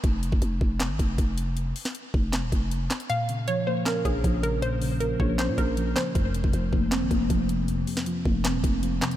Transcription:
<<
  \new Staff \with { instrumentName = "Synth pluck" } { \time 4/4 \key bes \minor \tempo 4 = 157 r1 | r1 | f''4 des''8 c''8 bes'8 aes'4 bes'8 | c''4 bes'8 des''8 c''8 bes'4 c''8 |
r1 | r1 | }
  \new Staff \with { instrumentName = "Synth keys" } { \clef bass \time 4/4 \key bes \minor r1 | r1 | bes,8 des8 f8 bes8 des'8 bes8 f8 des8 | bes,8 des8 f8 bes8 des'8 bes8 f8 des8 |
f,8 c8 f8 bes8 c'8 bes8 f8 c8 | f,8 c8 f8 bes8 c'8 bes8 f8 c8 | }
  \new Staff \with { instrumentName = "808-style bass" } { \clef bass \time 4/4 \key bes \minor f,,8. f,,16 f,,8 f,,8. aes,,16 f,,8 f,,4~ | f,,8 r4 f,,8. ees,,16 f,,4 r8 | r2 r8 bes,,8 bes,,4~ | bes,,4. bes,,8. bes,16 bes,,4 r8 |
f,,8. f,,16 f,,8 f,,8. aes,,16 f,,8 f,,4~ | f,,8 r4 f,,8. ees,,16 f,,4 r8 | }
  \new DrumStaff \with { instrumentName = "Drums" } \drummode { \time 4/4 <hh bd>8 hh16 bd16 hh8 bd8 <hc hh sn>8 <hh bd>8 <hh bd>8 hh8 | hh8 hho16 sn16 hh8 bd8 <hc hh sn>8 <hh bd>8 hh8 <hc hh sn>16 hh16 | hh8 hh8 hh4 <hc hh sn>8 <hh bd>8 <hh bd>8 hh8 | hh8 hho8 hh8 bd8 <hc hh sn>8 <hh bd>8 hh8 <hc hh sn>8 |
<hh bd>8 hh16 bd16 hh8 bd8 <hc hh sn>8 <hh bd>8 <hh bd>8 hh8 | hh8 hho16 sn16 hh8 bd8 <hc hh sn>8 <hh bd>8 hh8 <hc hh sn>16 hh16 | }
>>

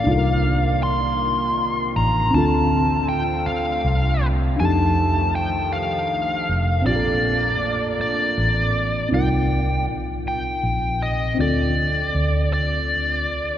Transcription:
<<
  \new Staff \with { instrumentName = "Lead electric guitar" } { \time 6/8 \key c \dorian \tempo 4. = 53 f''4 c'''4. bes''8 | a''4 g''8 f''4 r8 | a''4 g''8 f''4. | d''4. d''4. |
g''4 r8 g''4 ees''8 | d''4. d''4. | }
  \new Staff \with { instrumentName = "FM electric piano" } { \time 6/8 \key c \dorian <d' ees' f' a' bes'>2. | <c' d' f' a'>2. | <d' ees' g' a'>2. | <c' d' f' g' a'>2. |
<c' ees' f' bes'>2. | <c' d' f' a'>2. | }
  \new Staff \with { instrumentName = "Analog synth pad" } { \time 6/8 \key c \dorian << { <f' d''>2.~ | <f' d''>2. | ees2. | d'2. |
r2. | r2. | } \\ { <c ees bes>2. | <d a c'>2. | f2. | bes2. |
r2. | r2. | } >> }
  \new Staff \with { instrumentName = "Fingered electric bass" } { \clef bass \time 6/8 \key c \dorian c,2~ c,8 a,,8 | d,4. r8 c,4 | f,2~ f,8 f,,8 | bes,,4. r8 a,,4 |
c,4 bes,,8 r8 bes,,4 | d,4 d,4. c,8 | }
>>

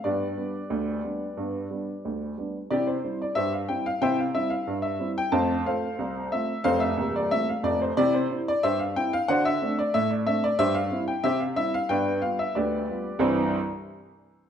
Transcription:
<<
  \new Staff \with { instrumentName = "Upright piano" } { \time 2/4 \key c \major \tempo 4 = 91 <g' b' d''>2~ | <g' b' d''>4. r8 | <g' d''>16 c''8 d''16 <g' c'' e''>16 f''16 g''16 f''16 | <c'' e'' g''>16 f''16 e''16 f''8 e''8 g''16 |
<c'' f'' a''>8 <a' c'' f''>4 e''8 | <a' c'' f''>16 e''8 d''16 e''16 f''16 d''16 c''16 | <g' d''>16 c''8 d''16 <g' c'' e''>16 f''16 g''16 f''16 | <c'' d'' fis''>16 e''8 d''16 e''16 d''16 e''16 d''16 |
<g' c'' e''>16 f''8 g''16 <g' c'' e''>16 f''16 e''16 f''16 | <b' d'' g''>8 f''16 e''16 <g' b' d''>4 | <c, g, e g c' e' c''>8 r4. | }
  \new Staff \with { instrumentName = "Upright piano" } { \time 2/4 \key c \major <g, b>8 <g b d'>8 d,8 <g b d'>8 | <g, b>8 <g b d'>8 d,8 <g b d'>8 | <c e'>8 <g c' e'>8 g,8 <g c' e'>8 | <c e'>8 <g c' e'>8 g,8 <g c' e'>8 |
<f, a>8 <a c' f'>8 c,8 <a c' f'>8 | <f,, f,>8 <c,, c,>8 <a c' f'>8 <f,, f,>8 | <c e'>8 <c' e'>8 g,8 <c' e'>8 | <d fis'>8 <a c' d'>8 a,8 <a c' d'>8 |
g,8 <g c' e'>8 c8 <g c' e'>8 | <g, b>8 <g b f'>8 d,8 <g b f'>8 | r2 | }
>>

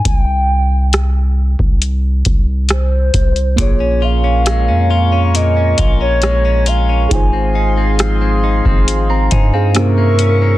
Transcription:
<<
  \new Staff \with { instrumentName = "Analog synth pad" } { \time 4/4 \key c \phrygian \tempo 4 = 68 r1 | <bes' aes'' des'''>1 | <aes' f'' c'''>2. <bes' e'' des'''>4 | }
  \new Staff \with { instrumentName = "Soft synth lead" } { \time 4/4 \key c \phrygian g''4. r4. c''4 | des''8 f''4. ees''8. des''8. f''8 | aes''4 r2 bes'4 | }
  \new Staff \with { instrumentName = "Synth keys" } { \time 4/4 \key c \phrygian << { r1 | r1 | r2 r16 bes''16 <c'' aes''>16 <aes' f''>8 r8. | } \\ { r1 | <bes f' aes' des''>1 | <ees' f' aes' c''>2. <bes des' e' c''>4 | } >> }
  \new Staff \with { instrumentName = "Clean electric guitar" } { \time 4/4 \key c \phrygian r1 | bes,16 des'16 f'16 des'16 aes16 des'16 f'16 des'16 bes,16 des'16 f'16 des'16 aes16 des'16 f'16 des'16 | r16 c'16 ees'16 c'16 f16 c'16 ees'16 c'8 c'16 ees'16 c'16 c16 bes16 des'16 bes16 | }
  \new Staff \with { instrumentName = "808-style bass" } { \clef bass \time 4/4 \key c \phrygian c,4.~ c,16 c,8. c,4 c,8 | bes,,4~ bes,,16 f,4~ f,16 bes,,4. | aes,,4.~ aes,,16 aes,,8. g,4. | }
  \new DrumStaff \with { instrumentName = "Drums" } \drummode { \time 4/4 <hh bd>4 <hh ss>8. bd16 hh8 <hh bd>8 <hh ss>8 <hh bd>16 hh16 | <hh bd>4 <hh ss>4 hh8 <hh bd>8 <hh ss>8 hh8 | <hh bd>4 <hh ss>8. bd16 hh8 <hh bd>8 <hh ss>8 hh8 | }
>>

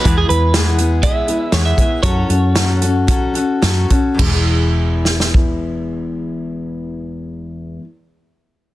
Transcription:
<<
  \new Staff \with { instrumentName = "Clean electric guitar" } { \time 4/4 \key e \major \tempo 4 = 105 b'16 gis'16 b'8 r4 e''4 cis''16 e''8. | cis''2 r2 | r1 | r1 | }
  \new Staff \with { instrumentName = "Steel-string acoustic guitar" } { \time 4/4 \key e \major <e, e gis b e' gis'>8 <gis b e' gis'>8 <e, e gis b e' gis'>8 <gis b e' gis'>8 <gis b e' gis'>8 <gis b e' gis'>8 <e, e gis b e' gis'>8 <gis b e' gis'>8 | <fis cis' fis' a'>8 <cis' fis' a'>8 <fis cis' fis' a'>8 <cis' fis' a'>8 <fis cis' fis' a'>8 <cis' fis' a'>8 <fis cis' fis' a'>8 <cis' fis' a'>8 | <e, e gis b e' gis'>1~ | <e, e gis b e' gis'>1 | }
  \new Staff \with { instrumentName = "Picked electric bass" } { \clef bass \time 4/4 \key e \major e,8 e,2 r8 e,8 r8 | fis,8 fis,2 r8 fis,8 r8 | e,,1~ | e,,1 | }
  \new DrumStaff \with { instrumentName = "Drums" } \drummode { \time 4/4 <hh bd>8 hh8 <hh sn>8 hh8 <hh bd>8 hh8 <hh sn>8 <hh bd>8 | <hh bd>8 hh8 <hh sn>8 hh8 <hh bd>8 hh8 <hh sn>8 <hh bd>8 | <cymc bd>4 r8 sn16 sn16 bd4 r4 | r4 r4 r4 r4 | }
>>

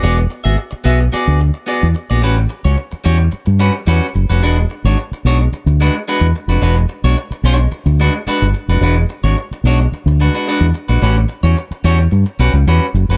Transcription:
<<
  \new Staff \with { instrumentName = "Clean electric guitar" } { \time 4/4 \key e \mixolydian \tempo 4 = 109 <b fis' gis' d''>16 r8 <b fis' gis' e''>16 r8 <b fis' gis' e''>16 r16 <b fis' gis' d''>8 r8 <b fis' gis' d''>16 r8 <b fis' gis' d''>16 | <g cis' fis' b'>16 r8 <g cis' fis' cis''>16 r8 <g cis' fis' cis''>16 r8. <g cis' fis' b'>16 r16 <g cis' fis' b'>16 r8 <g cis' fis' b'>16 | <gis d' fis' b'>16 r8 <gis d' fis' cis''>16 r8 <gis d' fis' cis''>16 r8. <gis d' fis' b'>16 r16 <gis d' fis' b'>16 r8 <gis d' fis' b'>16 | <gis d' fis' b'>16 r8 <gis d' fis' cis''>16 r8 <gis d' fis' cis''>16 r8. <gis d' fis' b'>16 r16 <gis d' fis' b'>16 r8 <gis d' fis' b'>16 |
<gis d' fis' b'>16 r8 <gis d' fis' cis''>16 r8 <gis d' fis' cis''>16 r8. <gis d' fis' b'>16 <gis d' fis' b'>16 <gis d' fis' b'>16 r8 <gis d' fis' b'>16 | <g cis' fis' b'>16 r8 <g cis' fis' cis''>16 r8 <g cis' fis' cis''>16 r8. <g cis' fis' b'>16 r16 <g cis' fis' b'>16 r8 <g cis' fis' b'>16 | }
  \new Staff \with { instrumentName = "Fingered electric bass" } { \clef bass \time 4/4 \key e \mixolydian e,,8 r16 gis,,16 r8 b,,8 r16 d,8 r8 e,16 r16 ais,,16 | a,,8 r16 cis,16 r8 e,8 r16 g,8 r16 e,16 r16 fis,,16 f,,16 | e,,8 r16 gis,,16 r8 b,,8 r16 d,8 r8 e,16 r16 f,,16 | e,,8 r16 b,,16 r8 b,,8 r16 d,8 r8 g,,16 r16 f,,16 |
e,,8 r16 gis,,16 r8 b,,8 r16 d,8 r8 e,16 r16 ais,,16 | a,,8 r16 e,16 r8 e,8 g,16 r16 b,,16 cis,16 e,16 r16 fis,,16 f,,16 | }
>>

